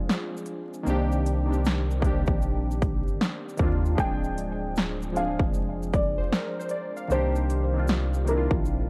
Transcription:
0.00 0.89 F3 medium
0.00 0.88 G#3 medium
0.00 0.86 C4 medium
0.00 0.88 D4 medium
0.00 0.89 F4 medium
0.09 snare loud
0.09 shaker medium
0.37 shaker soft
0.46 closed hi-hat medium
0.46 shaker soft
0.74 shaker soft
0.83 2.25 C2 loud
0.83 1.25 D#3 loud
0.83 1.26 A#3 medium
0.83 1.27 C4 medium
0.83 shaker medium
0.88 1.28 D4 medium
0.88 1.29 G4 loud
1.12 shaker soft
1.26 closed hi-hat medium
1.26 shaker medium
1.46 1.88 D#3 medium
1.46 1.89 A#3 medium
1.46 1.90 C4 medium
1.50 1.90 D4 medium
1.50 1.91 G4 medium
1.50 shaker soft
1.65 snare loud
1.65 shaker medium
1.91 shaker soft
2.00 3.12 D#3 medium
2.00 3.13 A#3 medium
2.00 3.13 C4 medium
2.00 kick medium
2.04 3.14 D4 medium
2.04 3.15 G4 loud
2.04 closed hi-hat medium
2.04 shaker soft
2.26 3.02 A#1 medium
2.26 kick medium
2.26 shaker soft
2.42 shaker medium
2.71 shaker soft
2.82 kick medium
2.82 closed hi-hat medium
2.82 shaker soft
3.07 3.19 G1 medium
3.07 shaker soft
3.21 snare loud
3.21 shaker medium
3.49 shaker soft
3.57 3.95 D#2 medium
3.57 3.89 D#3 medium
3.57 3.90 A#3 medium
3.57 3.90 C4 medium
3.57 kick medium
3.57 closed hi-hat medium
3.57 shaker soft
3.62 3.91 D4 medium
3.62 3.92 F4 medium
3.85 shaker soft
3.95 5.36 D1 loud
3.95 4.78 F3 medium
3.95 4.79 G#3 medium
3.95 4.80 C4 medium
3.95 kick loud
3.95 shaker medium
4.00 4.80 D4 medium
4.00 4.81 G#4 medium
4.00 4.73 G5 loud
4.24 shaker soft
4.38 closed hi-hat medium
4.38 shaker medium
4.76 snare loud
4.76 shaker medium
5.02 shaker soft
5.12 6.24 F3 medium
5.12 6.25 G#3 medium
5.12 6.25 C4 medium
5.16 6.26 D4 medium
5.16 6.27 G#4 medium
5.16 5.39 F5 medium
5.16 closed hi-hat medium
5.16 shaker soft
5.39 6.14 F1 medium
5.39 kick medium
5.54 shaker medium
5.83 shaker soft
5.93 7.07 D5 medium
5.93 kick medium
5.93 closed hi-hat medium
5.93 shaker soft
6.18 6.31 F1 medium
6.18 6.31 C5 medium
6.32 6.56 A#4 medium
6.32 snare loud
6.32 shaker medium
6.59 6.71 C5 medium
6.59 shaker soft
6.69 6.95 D5 medium
6.69 closed hi-hat medium
6.69 shaker soft
6.97 7.33 F5 medium
6.97 shaker soft
7.08 8.48 C2 loud
7.08 7.50 D#3 medium
7.08 7.50 A#3 medium
7.08 7.51 C4 medium
7.08 7.85 C5 loud
7.08 shaker medium
7.13 7.52 D4 medium
7.13 7.53 G4 loud
7.36 shaker soft
7.50 closed hi-hat medium
7.50 shaker medium
7.73 8.13 D#3 medium
7.73 8.14 A#3 medium
7.73 8.15 C4 medium
7.77 8.16 D4 medium
7.77 8.17 F4 medium
7.88 snare loud
7.88 shaker medium
8.14 shaker soft
8.24 8.90 D#3 medium
8.24 8.90 A#3 medium
8.24 8.90 C4 medium
8.24 closed hi-hat medium
8.24 shaker medium
8.29 8.90 D4 medium
8.29 8.37 E4 medium
8.29 8.50 A#4 medium
8.37 8.90 F4 medium
8.51 8.90 A#1 medium
8.51 kick medium
8.65 shaker medium

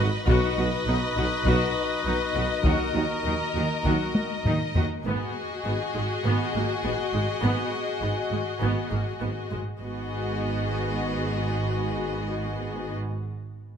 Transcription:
0.00 0.11 G#1 medium
0.00 0.10 D#4 medium
0.00 0.10 F#4 medium
0.00 0.10 B4 medium
0.00 0.23 B4 medium
0.00 0.10 D#5 medium
0.00 0.24 D#5 medium
0.27 0.35 B1 medium
0.27 0.40 B1 medium
0.27 0.36 B2 medium
0.27 0.48 F#3 medium
0.27 4.72 D#4 medium
0.27 0.48 D#4 medium
0.27 4.73 F#4 medium
0.27 0.55 F#4 medium
0.27 2.61 B4 medium
0.27 4.72 D#5 medium
0.27 4.83 D#5 medium
0.27 taiko medium
0.56 0.64 B1 soft
0.56 0.70 B1 soft
0.56 0.66 B2 soft
0.56 0.66 F#4 soft
0.86 0.94 B1 soft
0.86 0.99 B1 soft
0.86 0.96 B2 soft
0.86 0.96 D#4 soft
1.16 1.24 B1 soft
1.16 1.29 B1 soft
1.16 1.25 B2 soft
1.16 1.25 F#4 soft
1.44 1.52 B1 medium
1.44 1.58 B1 medium
1.44 1.55 B2 medium
1.44 1.65 F#3 soft
1.44 1.65 D#4 soft
1.44 1.74 F#4 medium
1.44 taiko medium
2.05 2.13 B1 soft
2.05 2.17 B1 soft
2.05 2.14 B2 soft
2.05 2.14 D#4 soft
2.34 2.42 B1 soft
2.34 2.47 B1 soft
2.34 2.43 B2 soft
2.34 2.43 F#4 soft
2.62 2.71 D#2 medium
2.62 2.76 D#2 medium
2.62 2.73 D#3 medium
2.62 2.84 F#3 soft
2.62 2.84 D#4 soft
2.62 2.93 F#4 medium
2.62 4.75 A#4 medium
2.62 4.86 A#4 soft
2.62 taiko medium
2.94 3.02 D#2 soft
2.94 3.06 D#2 soft
2.94 3.03 D#3 soft
2.94 3.03 F#4 soft
3.24 3.32 D#2 soft
3.24 3.37 D#2 soft
3.24 3.34 D#3 soft
3.24 3.35 D#4 soft
3.54 3.62 D#2 soft
3.54 3.67 D#2 soft
3.54 3.64 D#3 soft
3.54 3.64 F#4 soft
3.84 3.92 D#2 soft
3.84 3.97 D#2 soft
3.84 3.94 D#3 soft
3.84 4.07 F#3 soft
3.84 4.07 D#4 soft
3.84 4.13 F#4 soft
3.84 taiko medium
4.15 taiko high medium
4.45 4.53 D#2 soft
4.45 4.58 D#2 soft
4.45 4.54 D#3 soft
4.45 4.54 D#4 soft
4.45 taiko low-mid medium
4.75 4.84 D#2 soft
4.75 4.88 D#2 soft
4.75 4.83 D#3 soft
4.75 4.84 F#4 soft
4.75 taiko low medium
5.04 5.13 G#1 soft
5.04 5.13 G#2 soft
5.04 5.34 B3 soft
5.04 9.57 F#4 soft
5.04 9.56 G#4 soft
5.04 9.56 D#5 soft
5.65 5.73 G#1 soft
5.65 5.73 G#2 soft
5.65 5.74 B3 soft
5.94 6.04 G#1 soft
5.94 6.02 G#2 soft
5.94 6.03 G#3 soft
6.25 6.33 G#1 soft
6.25 6.33 G#2 soft
6.25 6.52 B3 soft
6.54 6.62 G#1 soft
6.54 6.63 G#2 soft
6.54 6.62 A#3 soft
6.84 6.92 G#1 soft
6.84 6.92 G#2 soft
6.84 6.92 B3 soft
7.13 7.21 G#1 soft
7.13 7.21 G#2 soft
7.13 7.22 G#3 soft
7.41 7.51 G#1 medium
7.41 7.50 G#2 medium
7.41 7.69 B3 medium
8.01 8.10 G#1 soft
8.01 8.10 G#2 soft
8.01 8.09 B3 soft
8.31 8.40 G#1 soft
8.31 8.40 G#2 soft
8.31 8.39 G#3 soft
8.61 8.70 G#1 soft
8.61 8.69 G#2 medium
8.61 8.89 B3 soft
8.91 9.00 G#1 soft
8.91 8.99 G#2 soft
8.91 8.99 A#3 soft
9.20 9.30 G#1 soft
9.20 9.29 G#2 soft
9.20 9.28 B3 soft
9.51 9.60 G#1 soft
9.51 9.59 G#2 soft
9.51 9.59 G#3 soft
9.79 12.95 G#1 soft
9.79 12.95 G#2 soft
9.79 12.94 B3 soft
9.79 12.94 F#4 soft
9.79 12.95 G#4 soft
9.79 12.94 D#5 soft

